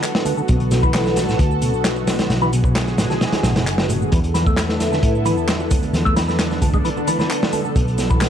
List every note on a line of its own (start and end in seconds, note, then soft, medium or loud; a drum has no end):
0.00 0.45 D3 medium
0.00 4.08 B3 medium
0.00 4.08 F#4 medium
0.00 0.45 A4 medium
0.00 clap loud
0.00 closed hi-hat medium
0.00 shaker soft
0.15 snare loud
0.15 shaker soft
0.25 0.34 D3 medium
0.25 closed hi-hat medium
0.25 open hi-hat medium
0.25 high conga loud
0.25 shaker medium
0.37 0.42 D3 medium
0.37 shaker soft
0.48 1.37 B1 loud
0.48 0.56 B2 medium
0.48 8.29 D3 medium
0.48 2.28 A4 medium
0.48 kick loud
0.48 closed hi-hat medium
0.48 shaker soft
0.60 closed hi-hat soft
0.60 shaker soft
0.71 0.82 B2 loud
0.71 snare soft
0.71 closed hi-hat medium
0.71 open hi-hat medium
0.71 shaker medium
0.83 1.27 E3 medium
0.83 kick medium
0.83 shaker soft
0.94 snare loud
0.94 clap loud
0.94 closed hi-hat medium
0.94 shaker soft
1.06 snare medium
1.06 high bongo soft
1.06 shaker soft
1.16 snare medium
1.16 closed hi-hat medium
1.16 open hi-hat medium
1.16 high conga loud
1.16 shaker medium
1.28 1.36 A2 medium
1.28 snare soft
1.28 shaker soft
1.39 1.74 D2 medium
1.39 kick loud
1.39 closed hi-hat medium
1.39 shaker soft
1.51 shaker soft
1.62 1.73 B2 loud
1.62 closed hi-hat medium
1.62 open hi-hat medium
1.62 low conga medium
1.62 shaker medium
1.74 2.27 B1 medium
1.74 shaker soft
1.84 snare loud
1.84 clap loud
1.84 closed hi-hat medium
1.84 shaker soft
1.96 high bongo medium
1.96 shaker soft
2.07 snare loud
2.07 closed hi-hat medium
2.07 open hi-hat medium
2.07 high conga loud
2.07 low conga medium
2.07 shaker medium
2.19 snare loud
2.19 closed hi-hat medium
2.19 high bongo soft
2.19 high conga medium
2.19 shaker soft
2.30 3.18 B1 loud
2.30 4.10 G#4 medium
2.30 snare loud
2.30 closed hi-hat medium
2.30 shaker soft
2.42 2.52 E3 loud
2.42 shaker soft
2.53 2.64 B2 loud
2.53 closed hi-hat medium
2.53 open hi-hat medium
2.53 shaker medium
2.64 2.75 B2 medium
2.64 kick loud
2.64 shaker soft
2.75 snare loud
2.75 clap loud
2.75 closed hi-hat medium
2.75 shaker soft
2.86 snare soft
2.86 high bongo medium
2.86 shaker soft
2.97 3.06 A2 medium
2.97 snare loud
2.97 closed hi-hat medium
2.97 open hi-hat medium
2.97 high conga medium
2.97 shaker medium
3.10 3.15 D3 medium
3.10 snare soft
3.10 shaker soft
3.21 3.26 B2 loud
3.21 snare loud
3.21 closed hi-hat medium
3.21 shaker soft
3.33 snare loud
3.33 closed hi-hat medium
3.33 low conga medium
3.33 shaker soft
3.43 3.55 B1 medium
3.43 3.54 B2 medium
3.43 snare loud
3.43 closed hi-hat medium
3.43 open hi-hat medium
3.43 high conga loud
3.43 shaker medium
3.55 4.09 F#1 medium
3.55 3.66 B2 medium
3.55 snare loud
3.55 closed hi-hat medium
3.55 high bongo medium
3.55 high conga medium
3.55 low conga medium
3.55 shaker soft
3.66 clap loud
3.66 closed hi-hat medium
3.66 shaker soft
3.78 snare loud
3.78 shaker soft
3.89 3.97 A2 medium
3.89 closed hi-hat medium
3.89 open hi-hat medium
3.89 high conga medium
3.89 shaker medium
4.00 4.05 A2 medium
4.00 shaker soft
4.12 5.00 E2 loud
4.12 4.20 E3 medium
4.12 8.29 B3 medium
4.12 5.92 E4 medium
4.12 8.29 A4 medium
4.12 kick loud
4.12 closed hi-hat loud
4.12 shaker soft
4.24 closed hi-hat soft
4.24 shaker soft
4.34 4.46 E3 loud
4.34 snare soft
4.34 closed hi-hat medium
4.34 open hi-hat medium
4.34 shaker medium
4.46 4.91 A3 medium
4.46 kick loud
4.46 shaker soft
4.57 snare loud
4.57 clap loud
4.57 closed hi-hat medium
4.57 shaker soft
4.69 snare medium
4.69 high bongo medium
4.69 shaker soft
4.80 snare soft
4.80 closed hi-hat medium
4.80 open hi-hat medium
4.80 high conga medium
4.80 shaker medium
4.92 4.99 D3 medium
4.92 snare soft
4.92 shaker soft
5.03 5.37 A2 medium
5.03 kick loud
5.03 closed hi-hat medium
5.03 shaker soft
5.15 shaker soft
5.25 5.37 E3 loud
5.25 closed hi-hat medium
5.25 open hi-hat medium
5.25 low conga medium
5.25 shaker medium
5.37 5.91 E2 medium
5.37 shaker soft
5.48 snare loud
5.48 clap loud
5.48 closed hi-hat medium
5.48 shaker soft
5.60 high bongo medium
5.60 shaker soft
5.71 kick loud
5.71 closed hi-hat medium
5.71 open hi-hat medium
5.71 high conga medium
5.71 low conga medium
5.71 shaker medium
5.83 closed hi-hat soft
5.83 high bongo medium
5.83 high conga medium
5.83 shaker soft
5.93 6.82 E2 loud
5.93 7.74 D4 medium
5.93 snare soft
5.93 closed hi-hat medium
5.93 shaker soft
6.05 6.15 A3 loud
6.05 kick medium
6.05 shaker soft
6.16 6.27 E3 loud
6.16 snare loud
6.16 closed hi-hat medium
6.16 open hi-hat medium
6.16 shaker medium
6.28 6.39 E3 medium
6.28 snare medium
6.28 shaker soft
6.39 snare loud
6.39 clap loud
6.39 closed hi-hat loud
6.39 shaker soft
6.51 snare soft
6.51 high bongo soft
6.51 shaker soft
6.62 6.70 D3 medium
6.62 kick loud
6.62 closed hi-hat medium
6.62 open hi-hat medium
6.62 high conga medium
6.62 shaker medium
6.74 6.78 G#3 medium
6.74 kick loud
6.74 shaker soft
6.85 6.89 E3 loud
6.85 closed hi-hat medium
6.85 shaker soft
6.97 low conga medium
6.97 shaker soft
7.08 7.18 E3 medium
7.08 closed hi-hat medium
7.08 open hi-hat medium
7.08 high conga loud
7.08 shaker medium
7.19 7.30 E3 medium
7.19 snare soft
7.19 high bongo medium
7.19 high conga medium
7.19 low conga medium
7.19 shaker soft
7.30 clap loud
7.30 closed hi-hat medium
7.30 shaker soft
7.42 snare loud
7.42 shaker soft
7.53 7.61 D3 medium
7.53 closed hi-hat medium
7.53 open hi-hat medium
7.53 high conga medium
7.53 shaker medium
7.65 7.69 D3 medium
7.65 shaker soft
7.76 8.29 B1 loud
7.76 7.84 B2 medium
7.76 8.29 F#4 medium
7.76 kick loud
7.76 closed hi-hat medium
7.76 shaker soft
7.87 closed hi-hat soft
7.87 shaker soft
7.98 8.09 B2 loud
7.98 snare soft
7.98 closed hi-hat medium
7.98 open hi-hat medium
7.98 shaker medium
8.10 8.29 E3 medium
8.10 kick loud
8.10 shaker soft
8.21 snare loud
8.21 clap loud
8.21 closed hi-hat loud
8.21 shaker soft